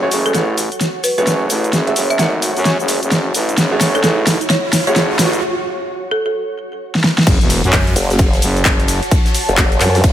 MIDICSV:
0, 0, Header, 1, 9, 480
1, 0, Start_track
1, 0, Key_signature, 3, "minor"
1, 0, Tempo, 461538
1, 1799, Time_signature, 4, 2, 24, 8
1, 10532, End_track
2, 0, Start_track
2, 0, Title_t, "Ambient pad"
2, 0, Program_c, 0, 92
2, 0, Note_on_c, 0, 66, 77
2, 0, Note_on_c, 0, 73, 80
2, 5637, Note_off_c, 0, 66, 0
2, 5638, Note_off_c, 0, 73, 0
2, 7557, Note_on_c, 0, 66, 86
2, 7813, Note_on_c, 0, 81, 92
2, 7860, Note_on_c, 0, 73, 83
2, 10532, Note_off_c, 0, 66, 0
2, 10532, Note_off_c, 0, 73, 0
2, 10532, Note_off_c, 0, 81, 0
2, 10532, End_track
3, 0, Start_track
3, 0, Title_t, "Marimba"
3, 0, Program_c, 1, 12
3, 268, Note_on_c, 1, 69, 82
3, 326, Note_off_c, 1, 69, 0
3, 358, Note_on_c, 1, 69, 72
3, 454, Note_off_c, 1, 69, 0
3, 1079, Note_on_c, 1, 71, 84
3, 1174, Note_off_c, 1, 71, 0
3, 1228, Note_on_c, 1, 71, 75
3, 1286, Note_off_c, 1, 71, 0
3, 2188, Note_on_c, 1, 76, 86
3, 2246, Note_off_c, 1, 76, 0
3, 2280, Note_on_c, 1, 76, 73
3, 2375, Note_off_c, 1, 76, 0
3, 4108, Note_on_c, 1, 69, 90
3, 4166, Note_off_c, 1, 69, 0
3, 4200, Note_on_c, 1, 69, 77
3, 4294, Note_off_c, 1, 69, 0
3, 4678, Note_on_c, 1, 73, 95
3, 4893, Note_off_c, 1, 73, 0
3, 5068, Note_on_c, 1, 73, 96
3, 5266, Note_off_c, 1, 73, 0
3, 6358, Note_on_c, 1, 69, 92
3, 6454, Note_off_c, 1, 69, 0
3, 6507, Note_on_c, 1, 69, 75
3, 6566, Note_off_c, 1, 69, 0
3, 10532, End_track
4, 0, Start_track
4, 0, Title_t, "Grand piano"
4, 0, Program_c, 2, 0
4, 27, Note_on_c, 2, 68, 81
4, 27, Note_on_c, 2, 73, 95
4, 28, Note_on_c, 2, 57, 89
4, 28, Note_on_c, 2, 66, 79
4, 337, Note_off_c, 2, 57, 0
4, 337, Note_off_c, 2, 66, 0
4, 337, Note_off_c, 2, 68, 0
4, 337, Note_off_c, 2, 73, 0
4, 358, Note_on_c, 2, 57, 75
4, 358, Note_on_c, 2, 66, 67
4, 358, Note_on_c, 2, 68, 69
4, 358, Note_on_c, 2, 73, 81
4, 583, Note_off_c, 2, 57, 0
4, 583, Note_off_c, 2, 66, 0
4, 583, Note_off_c, 2, 68, 0
4, 583, Note_off_c, 2, 73, 0
4, 1226, Note_on_c, 2, 57, 93
4, 1226, Note_on_c, 2, 66, 88
4, 1226, Note_on_c, 2, 68, 85
4, 1226, Note_on_c, 2, 73, 100
4, 1911, Note_off_c, 2, 57, 0
4, 1911, Note_off_c, 2, 66, 0
4, 1911, Note_off_c, 2, 68, 0
4, 1911, Note_off_c, 2, 73, 0
4, 1946, Note_on_c, 2, 57, 75
4, 1946, Note_on_c, 2, 66, 70
4, 1946, Note_on_c, 2, 68, 69
4, 1946, Note_on_c, 2, 76, 83
4, 2060, Note_off_c, 2, 57, 0
4, 2060, Note_off_c, 2, 66, 0
4, 2060, Note_off_c, 2, 68, 0
4, 2060, Note_off_c, 2, 76, 0
4, 2277, Note_on_c, 2, 57, 86
4, 2277, Note_on_c, 2, 66, 78
4, 2277, Note_on_c, 2, 68, 76
4, 2277, Note_on_c, 2, 78, 89
4, 3831, Note_off_c, 2, 57, 0
4, 3831, Note_off_c, 2, 66, 0
4, 3831, Note_off_c, 2, 68, 0
4, 3831, Note_off_c, 2, 78, 0
4, 3867, Note_on_c, 2, 57, 94
4, 3867, Note_on_c, 2, 66, 84
4, 3867, Note_on_c, 2, 68, 85
4, 3867, Note_on_c, 2, 73, 101
4, 4177, Note_off_c, 2, 57, 0
4, 4177, Note_off_c, 2, 66, 0
4, 4177, Note_off_c, 2, 68, 0
4, 4177, Note_off_c, 2, 73, 0
4, 4198, Note_on_c, 2, 57, 76
4, 4198, Note_on_c, 2, 66, 73
4, 4198, Note_on_c, 2, 68, 71
4, 4198, Note_on_c, 2, 73, 86
4, 4423, Note_off_c, 2, 57, 0
4, 4423, Note_off_c, 2, 66, 0
4, 4423, Note_off_c, 2, 68, 0
4, 4423, Note_off_c, 2, 73, 0
4, 5067, Note_on_c, 2, 57, 94
4, 5067, Note_on_c, 2, 66, 89
4, 5067, Note_on_c, 2, 68, 90
4, 5067, Note_on_c, 2, 73, 105
4, 5639, Note_off_c, 2, 57, 0
4, 5639, Note_off_c, 2, 66, 0
4, 5639, Note_off_c, 2, 68, 0
4, 5639, Note_off_c, 2, 73, 0
4, 10532, End_track
5, 0, Start_track
5, 0, Title_t, "FM bass"
5, 0, Program_c, 3, 39
5, 0, Note_on_c, 3, 30, 90
5, 104, Note_off_c, 3, 30, 0
5, 118, Note_on_c, 3, 30, 98
5, 344, Note_off_c, 3, 30, 0
5, 357, Note_on_c, 3, 33, 92
5, 723, Note_off_c, 3, 33, 0
5, 1226, Note_on_c, 3, 30, 99
5, 1543, Note_off_c, 3, 30, 0
5, 1557, Note_on_c, 3, 33, 94
5, 1783, Note_off_c, 3, 33, 0
5, 1797, Note_on_c, 3, 30, 96
5, 2023, Note_off_c, 3, 30, 0
5, 2037, Note_on_c, 3, 30, 98
5, 2264, Note_off_c, 3, 30, 0
5, 2277, Note_on_c, 3, 32, 93
5, 2643, Note_off_c, 3, 32, 0
5, 2665, Note_on_c, 3, 42, 100
5, 2883, Note_off_c, 3, 42, 0
5, 2906, Note_on_c, 3, 30, 95
5, 3123, Note_off_c, 3, 30, 0
5, 3147, Note_on_c, 3, 30, 98
5, 3464, Note_off_c, 3, 30, 0
5, 3477, Note_on_c, 3, 33, 96
5, 3703, Note_off_c, 3, 33, 0
5, 3717, Note_on_c, 3, 30, 96
5, 3943, Note_off_c, 3, 30, 0
5, 3957, Note_on_c, 3, 30, 101
5, 4183, Note_off_c, 3, 30, 0
5, 4197, Note_on_c, 3, 33, 97
5, 4563, Note_off_c, 3, 33, 0
5, 5066, Note_on_c, 3, 30, 98
5, 5383, Note_off_c, 3, 30, 0
5, 5397, Note_on_c, 3, 33, 93
5, 5623, Note_off_c, 3, 33, 0
5, 7559, Note_on_c, 3, 30, 99
5, 7684, Note_off_c, 3, 30, 0
5, 7707, Note_on_c, 3, 28, 98
5, 7924, Note_off_c, 3, 28, 0
5, 7947, Note_on_c, 3, 42, 98
5, 8264, Note_off_c, 3, 42, 0
5, 8759, Note_on_c, 3, 30, 96
5, 8984, Note_off_c, 3, 30, 0
5, 8999, Note_on_c, 3, 30, 99
5, 9364, Note_off_c, 3, 30, 0
5, 10532, End_track
6, 0, Start_track
6, 0, Title_t, "Wobble bass"
6, 0, Program_c, 4, 39
6, 8278, Note_on_c, 4, 30, 101
6, 8744, Note_off_c, 4, 30, 0
6, 9867, Note_on_c, 4, 30, 98
6, 10184, Note_off_c, 4, 30, 0
6, 10199, Note_on_c, 4, 42, 97
6, 10424, Note_off_c, 4, 42, 0
6, 10439, Note_on_c, 4, 30, 99
6, 10532, Note_off_c, 4, 30, 0
6, 10532, End_track
7, 0, Start_track
7, 0, Title_t, "Impact"
7, 0, Program_c, 5, 103
7, 7559, Note_on_c, 5, 60, 75
7, 9479, Note_off_c, 5, 60, 0
7, 10532, End_track
8, 0, Start_track
8, 0, Title_t, "Riser"
8, 0, Program_c, 6, 103
8, 0, Note_on_c, 6, 60, 72
8, 5639, Note_off_c, 6, 60, 0
8, 10532, End_track
9, 0, Start_track
9, 0, Title_t, "Drums"
9, 119, Note_on_c, 9, 46, 102
9, 121, Note_on_c, 9, 82, 76
9, 223, Note_off_c, 9, 46, 0
9, 225, Note_off_c, 9, 82, 0
9, 268, Note_on_c, 9, 42, 52
9, 270, Note_on_c, 9, 82, 31
9, 358, Note_off_c, 9, 42, 0
9, 358, Note_on_c, 9, 38, 49
9, 358, Note_on_c, 9, 42, 66
9, 360, Note_off_c, 9, 82, 0
9, 360, Note_on_c, 9, 82, 44
9, 462, Note_off_c, 9, 38, 0
9, 462, Note_off_c, 9, 42, 0
9, 464, Note_off_c, 9, 82, 0
9, 599, Note_on_c, 9, 46, 98
9, 601, Note_on_c, 9, 82, 73
9, 703, Note_off_c, 9, 46, 0
9, 705, Note_off_c, 9, 82, 0
9, 747, Note_on_c, 9, 42, 53
9, 749, Note_on_c, 9, 82, 32
9, 839, Note_off_c, 9, 42, 0
9, 839, Note_on_c, 9, 38, 50
9, 839, Note_on_c, 9, 42, 64
9, 840, Note_off_c, 9, 82, 0
9, 840, Note_on_c, 9, 82, 42
9, 943, Note_off_c, 9, 38, 0
9, 943, Note_off_c, 9, 42, 0
9, 944, Note_off_c, 9, 82, 0
9, 1079, Note_on_c, 9, 46, 97
9, 1081, Note_on_c, 9, 82, 75
9, 1183, Note_off_c, 9, 46, 0
9, 1185, Note_off_c, 9, 82, 0
9, 1228, Note_on_c, 9, 42, 51
9, 1229, Note_on_c, 9, 82, 32
9, 1319, Note_off_c, 9, 42, 0
9, 1319, Note_on_c, 9, 38, 51
9, 1319, Note_on_c, 9, 42, 64
9, 1321, Note_off_c, 9, 82, 0
9, 1321, Note_on_c, 9, 82, 42
9, 1423, Note_off_c, 9, 38, 0
9, 1423, Note_off_c, 9, 42, 0
9, 1425, Note_off_c, 9, 82, 0
9, 1559, Note_on_c, 9, 46, 101
9, 1561, Note_on_c, 9, 82, 76
9, 1663, Note_off_c, 9, 46, 0
9, 1665, Note_off_c, 9, 82, 0
9, 1709, Note_on_c, 9, 42, 52
9, 1710, Note_on_c, 9, 82, 33
9, 1800, Note_off_c, 9, 42, 0
9, 1800, Note_on_c, 9, 38, 58
9, 1800, Note_on_c, 9, 42, 64
9, 1801, Note_off_c, 9, 82, 0
9, 1801, Note_on_c, 9, 82, 41
9, 1904, Note_off_c, 9, 38, 0
9, 1904, Note_off_c, 9, 42, 0
9, 1905, Note_off_c, 9, 82, 0
9, 1948, Note_on_c, 9, 42, 36
9, 2039, Note_on_c, 9, 46, 103
9, 2041, Note_on_c, 9, 82, 71
9, 2052, Note_off_c, 9, 42, 0
9, 2143, Note_off_c, 9, 46, 0
9, 2145, Note_off_c, 9, 82, 0
9, 2188, Note_on_c, 9, 42, 50
9, 2190, Note_on_c, 9, 82, 31
9, 2280, Note_off_c, 9, 42, 0
9, 2280, Note_on_c, 9, 38, 63
9, 2280, Note_on_c, 9, 42, 66
9, 2281, Note_off_c, 9, 82, 0
9, 2281, Note_on_c, 9, 82, 42
9, 2384, Note_off_c, 9, 38, 0
9, 2384, Note_off_c, 9, 42, 0
9, 2385, Note_off_c, 9, 82, 0
9, 2520, Note_on_c, 9, 46, 105
9, 2521, Note_on_c, 9, 82, 72
9, 2624, Note_off_c, 9, 46, 0
9, 2625, Note_off_c, 9, 82, 0
9, 2668, Note_on_c, 9, 46, 61
9, 2670, Note_on_c, 9, 82, 33
9, 2760, Note_on_c, 9, 38, 65
9, 2760, Note_on_c, 9, 42, 66
9, 2762, Note_off_c, 9, 82, 0
9, 2762, Note_on_c, 9, 82, 42
9, 2772, Note_off_c, 9, 46, 0
9, 2864, Note_off_c, 9, 38, 0
9, 2864, Note_off_c, 9, 42, 0
9, 2866, Note_off_c, 9, 82, 0
9, 2910, Note_on_c, 9, 82, 30
9, 2999, Note_on_c, 9, 46, 106
9, 3001, Note_off_c, 9, 82, 0
9, 3001, Note_on_c, 9, 82, 73
9, 3103, Note_off_c, 9, 46, 0
9, 3105, Note_off_c, 9, 82, 0
9, 3148, Note_on_c, 9, 42, 52
9, 3150, Note_on_c, 9, 82, 30
9, 3239, Note_off_c, 9, 42, 0
9, 3239, Note_on_c, 9, 38, 65
9, 3239, Note_on_c, 9, 42, 62
9, 3241, Note_off_c, 9, 82, 0
9, 3241, Note_on_c, 9, 82, 41
9, 3343, Note_off_c, 9, 38, 0
9, 3343, Note_off_c, 9, 42, 0
9, 3345, Note_off_c, 9, 82, 0
9, 3479, Note_on_c, 9, 46, 107
9, 3481, Note_on_c, 9, 82, 73
9, 3583, Note_off_c, 9, 46, 0
9, 3585, Note_off_c, 9, 82, 0
9, 3628, Note_on_c, 9, 42, 53
9, 3630, Note_on_c, 9, 82, 32
9, 3719, Note_off_c, 9, 42, 0
9, 3719, Note_on_c, 9, 38, 73
9, 3719, Note_on_c, 9, 42, 62
9, 3721, Note_off_c, 9, 82, 0
9, 3721, Note_on_c, 9, 82, 43
9, 3823, Note_off_c, 9, 38, 0
9, 3823, Note_off_c, 9, 42, 0
9, 3825, Note_off_c, 9, 82, 0
9, 3959, Note_on_c, 9, 38, 75
9, 3959, Note_on_c, 9, 46, 110
9, 3961, Note_on_c, 9, 82, 72
9, 4063, Note_off_c, 9, 38, 0
9, 4063, Note_off_c, 9, 46, 0
9, 4065, Note_off_c, 9, 82, 0
9, 4108, Note_on_c, 9, 42, 52
9, 4110, Note_on_c, 9, 82, 32
9, 4198, Note_off_c, 9, 42, 0
9, 4198, Note_on_c, 9, 38, 77
9, 4198, Note_on_c, 9, 42, 64
9, 4200, Note_off_c, 9, 82, 0
9, 4200, Note_on_c, 9, 82, 43
9, 4302, Note_off_c, 9, 38, 0
9, 4302, Note_off_c, 9, 42, 0
9, 4304, Note_off_c, 9, 82, 0
9, 4438, Note_on_c, 9, 38, 81
9, 4438, Note_on_c, 9, 46, 106
9, 4440, Note_on_c, 9, 82, 72
9, 4542, Note_off_c, 9, 38, 0
9, 4542, Note_off_c, 9, 46, 0
9, 4544, Note_off_c, 9, 82, 0
9, 4587, Note_on_c, 9, 42, 51
9, 4589, Note_on_c, 9, 82, 31
9, 4679, Note_off_c, 9, 42, 0
9, 4679, Note_on_c, 9, 38, 82
9, 4679, Note_on_c, 9, 42, 62
9, 4681, Note_off_c, 9, 82, 0
9, 4681, Note_on_c, 9, 82, 41
9, 4783, Note_off_c, 9, 38, 0
9, 4783, Note_off_c, 9, 42, 0
9, 4785, Note_off_c, 9, 82, 0
9, 4917, Note_on_c, 9, 38, 84
9, 4917, Note_on_c, 9, 46, 105
9, 4919, Note_on_c, 9, 82, 73
9, 5021, Note_off_c, 9, 38, 0
9, 5021, Note_off_c, 9, 46, 0
9, 5023, Note_off_c, 9, 82, 0
9, 5066, Note_on_c, 9, 42, 53
9, 5068, Note_on_c, 9, 82, 31
9, 5158, Note_off_c, 9, 42, 0
9, 5158, Note_on_c, 9, 38, 86
9, 5158, Note_on_c, 9, 42, 64
9, 5160, Note_off_c, 9, 82, 0
9, 5160, Note_on_c, 9, 82, 42
9, 5262, Note_off_c, 9, 38, 0
9, 5262, Note_off_c, 9, 42, 0
9, 5264, Note_off_c, 9, 82, 0
9, 5398, Note_on_c, 9, 38, 87
9, 5398, Note_on_c, 9, 46, 115
9, 5400, Note_on_c, 9, 82, 76
9, 5502, Note_off_c, 9, 38, 0
9, 5502, Note_off_c, 9, 46, 0
9, 5504, Note_off_c, 9, 82, 0
9, 5547, Note_on_c, 9, 42, 51
9, 5549, Note_on_c, 9, 82, 31
9, 5651, Note_off_c, 9, 42, 0
9, 5653, Note_off_c, 9, 82, 0
9, 7228, Note_on_c, 9, 38, 53
9, 7320, Note_off_c, 9, 38, 0
9, 7320, Note_on_c, 9, 38, 79
9, 7424, Note_off_c, 9, 38, 0
9, 7469, Note_on_c, 9, 38, 81
9, 7559, Note_on_c, 9, 36, 122
9, 7559, Note_on_c, 9, 42, 83
9, 7559, Note_on_c, 9, 49, 102
9, 7559, Note_on_c, 9, 51, 53
9, 7561, Note_on_c, 9, 82, 45
9, 7566, Note_off_c, 9, 51, 0
9, 7566, Note_on_c, 9, 51, 90
9, 7573, Note_off_c, 9, 38, 0
9, 7663, Note_off_c, 9, 36, 0
9, 7663, Note_off_c, 9, 42, 0
9, 7663, Note_off_c, 9, 49, 0
9, 7665, Note_off_c, 9, 82, 0
9, 7670, Note_off_c, 9, 51, 0
9, 7708, Note_on_c, 9, 42, 41
9, 7710, Note_on_c, 9, 82, 23
9, 7798, Note_on_c, 9, 51, 69
9, 7799, Note_off_c, 9, 51, 0
9, 7799, Note_on_c, 9, 46, 109
9, 7799, Note_on_c, 9, 51, 76
9, 7801, Note_off_c, 9, 82, 0
9, 7801, Note_on_c, 9, 82, 79
9, 7812, Note_off_c, 9, 42, 0
9, 7903, Note_off_c, 9, 46, 0
9, 7903, Note_off_c, 9, 51, 0
9, 7905, Note_off_c, 9, 82, 0
9, 7948, Note_on_c, 9, 42, 38
9, 7949, Note_on_c, 9, 82, 34
9, 8036, Note_on_c, 9, 39, 127
9, 8038, Note_off_c, 9, 42, 0
9, 8038, Note_on_c, 9, 42, 81
9, 8039, Note_on_c, 9, 36, 108
9, 8039, Note_on_c, 9, 46, 81
9, 8040, Note_off_c, 9, 82, 0
9, 8040, Note_on_c, 9, 82, 44
9, 8048, Note_on_c, 9, 38, 121
9, 8140, Note_off_c, 9, 39, 0
9, 8142, Note_off_c, 9, 42, 0
9, 8143, Note_off_c, 9, 36, 0
9, 8143, Note_off_c, 9, 46, 0
9, 8144, Note_off_c, 9, 82, 0
9, 8152, Note_off_c, 9, 38, 0
9, 8187, Note_on_c, 9, 42, 37
9, 8189, Note_on_c, 9, 82, 22
9, 8276, Note_on_c, 9, 51, 65
9, 8278, Note_off_c, 9, 51, 0
9, 8278, Note_on_c, 9, 46, 101
9, 8278, Note_on_c, 9, 51, 74
9, 8280, Note_off_c, 9, 82, 0
9, 8280, Note_on_c, 9, 82, 77
9, 8291, Note_off_c, 9, 42, 0
9, 8382, Note_off_c, 9, 46, 0
9, 8382, Note_off_c, 9, 51, 0
9, 8384, Note_off_c, 9, 82, 0
9, 8427, Note_on_c, 9, 42, 56
9, 8429, Note_on_c, 9, 82, 35
9, 8430, Note_on_c, 9, 38, 51
9, 8512, Note_on_c, 9, 51, 102
9, 8518, Note_off_c, 9, 42, 0
9, 8518, Note_off_c, 9, 51, 0
9, 8518, Note_on_c, 9, 42, 85
9, 8518, Note_on_c, 9, 51, 53
9, 8519, Note_on_c, 9, 36, 119
9, 8520, Note_off_c, 9, 82, 0
9, 8520, Note_on_c, 9, 82, 45
9, 8534, Note_off_c, 9, 38, 0
9, 8622, Note_off_c, 9, 42, 0
9, 8622, Note_off_c, 9, 51, 0
9, 8623, Note_off_c, 9, 36, 0
9, 8624, Note_off_c, 9, 82, 0
9, 8668, Note_on_c, 9, 42, 40
9, 8669, Note_on_c, 9, 82, 24
9, 8670, Note_on_c, 9, 38, 49
9, 8758, Note_on_c, 9, 46, 108
9, 8758, Note_on_c, 9, 51, 75
9, 8760, Note_off_c, 9, 82, 0
9, 8760, Note_on_c, 9, 82, 79
9, 8763, Note_off_c, 9, 51, 0
9, 8763, Note_on_c, 9, 51, 68
9, 8772, Note_off_c, 9, 42, 0
9, 8774, Note_off_c, 9, 38, 0
9, 8862, Note_off_c, 9, 46, 0
9, 8864, Note_off_c, 9, 82, 0
9, 8867, Note_off_c, 9, 51, 0
9, 8907, Note_on_c, 9, 42, 38
9, 8909, Note_on_c, 9, 82, 33
9, 8996, Note_on_c, 9, 39, 124
9, 8999, Note_off_c, 9, 42, 0
9, 8999, Note_on_c, 9, 36, 106
9, 8999, Note_on_c, 9, 42, 82
9, 9000, Note_off_c, 9, 82, 0
9, 9000, Note_on_c, 9, 82, 44
9, 9001, Note_on_c, 9, 38, 107
9, 9100, Note_off_c, 9, 39, 0
9, 9103, Note_off_c, 9, 36, 0
9, 9103, Note_off_c, 9, 42, 0
9, 9104, Note_off_c, 9, 82, 0
9, 9105, Note_off_c, 9, 38, 0
9, 9148, Note_on_c, 9, 42, 58
9, 9150, Note_on_c, 9, 82, 23
9, 9235, Note_on_c, 9, 51, 75
9, 9239, Note_off_c, 9, 51, 0
9, 9239, Note_on_c, 9, 46, 110
9, 9239, Note_on_c, 9, 51, 75
9, 9240, Note_off_c, 9, 82, 0
9, 9240, Note_on_c, 9, 82, 80
9, 9252, Note_off_c, 9, 42, 0
9, 9343, Note_off_c, 9, 46, 0
9, 9343, Note_off_c, 9, 51, 0
9, 9344, Note_off_c, 9, 82, 0
9, 9387, Note_on_c, 9, 42, 38
9, 9389, Note_on_c, 9, 82, 35
9, 9479, Note_off_c, 9, 42, 0
9, 9479, Note_on_c, 9, 36, 127
9, 9479, Note_on_c, 9, 42, 80
9, 9479, Note_on_c, 9, 51, 54
9, 9480, Note_off_c, 9, 51, 0
9, 9480, Note_on_c, 9, 51, 89
9, 9481, Note_off_c, 9, 82, 0
9, 9481, Note_on_c, 9, 82, 44
9, 9583, Note_off_c, 9, 36, 0
9, 9583, Note_off_c, 9, 42, 0
9, 9584, Note_off_c, 9, 51, 0
9, 9585, Note_off_c, 9, 82, 0
9, 9624, Note_on_c, 9, 38, 61
9, 9628, Note_on_c, 9, 42, 39
9, 9630, Note_on_c, 9, 82, 23
9, 9718, Note_on_c, 9, 51, 65
9, 9719, Note_off_c, 9, 51, 0
9, 9719, Note_on_c, 9, 46, 108
9, 9719, Note_on_c, 9, 51, 75
9, 9720, Note_off_c, 9, 82, 0
9, 9720, Note_on_c, 9, 82, 74
9, 9728, Note_off_c, 9, 38, 0
9, 9732, Note_off_c, 9, 42, 0
9, 9823, Note_off_c, 9, 46, 0
9, 9823, Note_off_c, 9, 51, 0
9, 9824, Note_off_c, 9, 82, 0
9, 9867, Note_on_c, 9, 42, 37
9, 9869, Note_on_c, 9, 82, 33
9, 9957, Note_on_c, 9, 39, 127
9, 9958, Note_on_c, 9, 38, 118
9, 9959, Note_off_c, 9, 42, 0
9, 9959, Note_on_c, 9, 36, 110
9, 9959, Note_on_c, 9, 42, 82
9, 9961, Note_off_c, 9, 82, 0
9, 9961, Note_on_c, 9, 82, 45
9, 9964, Note_on_c, 9, 51, 92
9, 10061, Note_off_c, 9, 39, 0
9, 10062, Note_off_c, 9, 38, 0
9, 10063, Note_off_c, 9, 36, 0
9, 10063, Note_off_c, 9, 42, 0
9, 10065, Note_off_c, 9, 82, 0
9, 10068, Note_off_c, 9, 51, 0
9, 10108, Note_on_c, 9, 42, 37
9, 10110, Note_on_c, 9, 82, 21
9, 10197, Note_on_c, 9, 39, 65
9, 10198, Note_on_c, 9, 51, 67
9, 10199, Note_off_c, 9, 51, 0
9, 10199, Note_on_c, 9, 46, 109
9, 10199, Note_on_c, 9, 51, 74
9, 10201, Note_off_c, 9, 82, 0
9, 10201, Note_on_c, 9, 82, 75
9, 10212, Note_off_c, 9, 42, 0
9, 10301, Note_off_c, 9, 39, 0
9, 10303, Note_off_c, 9, 46, 0
9, 10303, Note_off_c, 9, 51, 0
9, 10305, Note_off_c, 9, 82, 0
9, 10348, Note_on_c, 9, 46, 65
9, 10350, Note_on_c, 9, 82, 33
9, 10439, Note_on_c, 9, 36, 124
9, 10439, Note_on_c, 9, 42, 80
9, 10439, Note_on_c, 9, 51, 55
9, 10441, Note_off_c, 9, 82, 0
9, 10441, Note_on_c, 9, 82, 43
9, 10442, Note_off_c, 9, 51, 0
9, 10442, Note_on_c, 9, 51, 90
9, 10452, Note_off_c, 9, 46, 0
9, 10532, Note_off_c, 9, 36, 0
9, 10532, Note_off_c, 9, 42, 0
9, 10532, Note_off_c, 9, 51, 0
9, 10532, Note_off_c, 9, 82, 0
9, 10532, End_track
0, 0, End_of_file